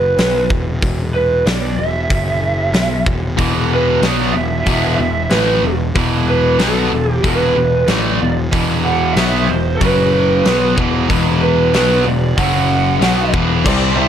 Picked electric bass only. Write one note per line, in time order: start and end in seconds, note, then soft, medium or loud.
0.00 0.14 F#1 medium
0.18 0.47 B1 medium
0.50 0.80 E1 medium
0.83 1.42 E1 medium
1.46 1.76 B1 medium
1.77 2.07 E1 medium
2.10 2.70 F#1 medium
2.72 3.03 B1 medium
3.06 3.36 E1 medium
3.38 3.99 E1 medium
4.02 4.32 B1 medium
4.34 4.64 E1 medium
4.66 4.96 E1 medium
4.99 5.29 E1 medium
5.30 5.60 A1 medium
5.63 5.93 E1 medium
5.96 6.56 E1 medium
6.59 6.89 B1 medium
6.92 7.22 E1 medium
7.24 7.54 E1 medium
7.56 7.86 E1 medium
7.88 8.18 A1 medium
8.20 8.50 E1 medium
8.53 9.13 E1 medium
9.16 9.46 B1 loud
9.49 9.79 E1 medium
9.81 10.41 F#1 medium
10.46 10.75 B1 medium
10.77 11.07 E1 medium
11.10 11.70 E1 medium
11.73 12.03 B1 medium
12.05 12.35 E1 medium
12.38 12.98 F#1 medium
13.00 13.30 B1 medium
13.33 13.63 E1 medium
13.66 13.96 C2 medium
13.96 14.08 C2 medium